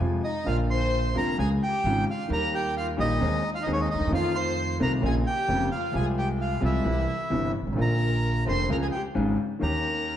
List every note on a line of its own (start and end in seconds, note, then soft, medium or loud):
0.00 0.19 F2 medium
0.00 0.20 F2 medium
0.00 0.20 C3 medium
0.00 0.20 F3 medium
0.00 0.20 G#3 medium
0.00 0.19 F4 medium
0.24 0.45 D#4 soft
0.24 0.47 D#5 medium
0.43 1.12 A#1 medium
0.43 1.12 A#2 medium
0.43 1.10 D3 medium
0.43 1.11 F3 medium
0.43 1.12 A#3 medium
0.43 0.57 F5 medium
0.48 1.13 F4 medium
0.48 0.59 F4 medium
0.70 1.13 C5 medium
0.70 1.17 C6 medium
1.14 1.34 F1 medium
1.14 1.34 F2 medium
1.14 1.34 D3 soft
1.14 1.34 F3 medium
1.14 1.34 A#3 medium
1.14 1.34 F4 medium
1.14 1.37 A#4 medium
1.14 1.38 A#5 medium
1.38 1.57 C#2 medium
1.38 1.58 C#2 medium
1.38 1.57 C#3 medium
1.38 1.57 F3 soft
1.38 1.57 G#3 medium
1.38 1.57 F4 medium
1.38 1.50 G#4 medium
1.38 1.49 G#5 medium
1.63 2.05 G4 medium
1.63 2.05 G5 medium
1.84 2.03 G#1 medium
1.84 2.04 G#1 medium
1.84 2.04 G#2 medium
1.84 2.04 C#3 medium
1.84 2.04 F3 medium
1.84 2.04 G#3 medium
1.84 2.04 F4 medium
2.11 2.30 F4 medium
2.11 2.30 F5 medium
2.28 2.95 D#2 medium
2.28 2.29 D#3 medium
2.28 2.95 D#3 medium
2.28 2.94 G3 soft
2.28 2.95 A#3 medium
2.28 2.96 G4 medium
2.32 2.52 A#4 medium
2.32 2.55 A#5 medium
2.55 2.75 G4 medium
2.55 2.75 G5 medium
2.77 2.89 F4 medium
2.77 2.87 F5 medium
2.97 3.16 A#1 medium
2.97 3.17 A#1 medium
2.97 3.17 A#2 medium
2.97 3.17 D#3 medium
2.97 3.17 G3 medium
2.97 3.17 A#3 medium
2.97 3.51 D#4 medium
2.97 3.17 G4 medium
2.97 3.50 D#5 medium
3.21 3.40 D#2 medium
3.21 3.40 D#3 medium
3.21 3.40 G#3 soft
3.21 3.40 C4 medium
3.21 3.40 G#4 medium
3.54 3.62 F4 medium
3.54 3.63 F5 medium
3.61 3.70 D#4 medium
3.61 3.71 D#5 medium
3.66 3.86 D#2 medium
3.66 3.86 D#3 medium
3.66 3.86 G#3 medium
3.66 3.86 C4 medium
3.66 3.86 G#4 medium
3.71 3.79 C#4 medium
3.71 3.81 C#5 medium
3.81 3.89 D#4 medium
3.81 3.89 D#5 medium
3.90 4.00 D2 soft
3.90 4.12 D#4 medium
3.90 4.11 D#5 medium
3.95 4.00 D2 soft
3.99 4.05 D#2 medium
3.99 4.06 D#2 medium
4.06 4.12 E2 medium
4.06 4.11 E2 medium
4.06 4.75 D#3 medium
4.06 4.76 A3 medium
4.10 4.77 F2 medium
4.10 4.76 F3 medium
4.10 4.77 C4 medium
4.10 4.77 F4 medium
4.14 4.35 F4 medium
4.14 4.37 F5 medium
4.35 4.78 C5 medium
4.35 4.78 C6 medium
4.80 4.99 C2 medium
4.80 5.00 C2 medium
4.80 5.00 C3 medium
4.80 4.99 D#3 medium
4.80 4.99 A3 soft
4.80 4.99 C4 medium
4.80 4.99 F4 medium
4.80 4.93 A#4 medium
4.80 4.92 A#5 medium
5.01 5.22 A#1 medium
5.01 5.22 A#2 medium
5.01 5.21 C#3 medium
5.01 5.22 F3 medium
5.01 5.22 A#3 medium
5.01 5.21 F4 medium
5.05 5.15 G#4 medium
5.05 5.15 G#5 medium
5.27 5.70 G4 medium
5.27 5.69 G5 medium
5.48 5.68 F1 medium
5.48 5.68 F2 medium
5.48 5.67 C#3 medium
5.48 5.68 F3 medium
5.48 5.67 A#3 medium
5.48 5.68 F4 medium
5.72 5.94 F4 medium
5.72 5.95 F5 medium
5.92 6.59 C2 medium
5.92 6.60 C2 medium
5.92 6.59 C3 medium
5.92 6.59 F3 medium
5.92 6.59 G#3 soft
5.92 6.59 F4 medium
5.96 6.06 G#4 medium
5.96 6.06 G#5 medium
6.18 6.28 G4 medium
6.18 6.29 G5 medium
6.40 6.61 F4 soft
6.40 6.62 F5 medium
6.60 6.81 C2 medium
6.60 6.82 C2 medium
6.60 6.81 C3 medium
6.60 6.81 F3 medium
6.60 6.81 G#3 medium
6.60 7.51 E4 soft
6.60 6.81 F4 medium
6.65 7.52 E5 medium
6.84 7.04 C2 medium
6.84 7.05 C2 medium
6.84 7.04 C3 medium
6.84 7.05 E3 soft
6.84 7.05 G3 medium
6.84 7.05 E4 medium
7.30 7.51 G1 medium
7.30 7.51 G2 medium
7.30 7.50 C3 medium
7.30 7.50 E3 medium
7.30 7.51 G3 medium
7.30 7.51 E4 medium
7.61 7.66 G1 soft
7.61 7.67 G1 soft
7.66 7.72 G#1 soft
7.66 7.72 G#1 medium
7.72 7.78 A1 medium
7.72 8.42 A#1 medium
7.72 8.42 A#2 medium
7.72 8.41 D3 medium
7.72 8.42 F3 soft
7.77 8.44 A#1 medium
7.77 8.43 A#3 medium
7.77 8.43 F4 medium
7.77 8.43 A#4 medium
7.81 8.44 A#5 medium
8.46 8.66 F1 medium
8.46 8.66 F2 medium
8.46 8.66 D3 medium
8.46 8.65 F3 medium
8.46 8.66 A#3 medium
8.46 8.66 F4 medium
8.46 8.68 C5 medium
8.46 8.69 C6 medium
8.69 8.88 C#2 medium
8.69 8.89 C#2 medium
8.69 8.88 C#3 medium
8.69 8.88 F3 medium
8.69 8.88 G#3 medium
8.69 8.89 F4 medium
8.69 8.75 A#4 medium
8.69 8.77 A#5 medium
8.82 8.87 G#4 medium
8.82 8.87 G#5 medium
8.92 9.05 G4 soft
8.92 9.02 G5 medium
9.14 9.34 G#1 medium
9.14 9.35 G#1 medium
9.14 9.34 G#2 medium
9.14 9.34 C#3 medium
9.14 9.34 F3 medium
9.14 9.34 G#3 medium
9.14 9.34 F4 medium
9.59 10.17 D#2 medium
9.59 9.60 D#3 medium
9.59 10.17 D#3 medium
9.59 10.17 A#3 medium
9.59 10.17 C#4 medium
9.59 10.17 G4 medium
9.59 10.17 A#5 medium
9.66 10.17 A#4 medium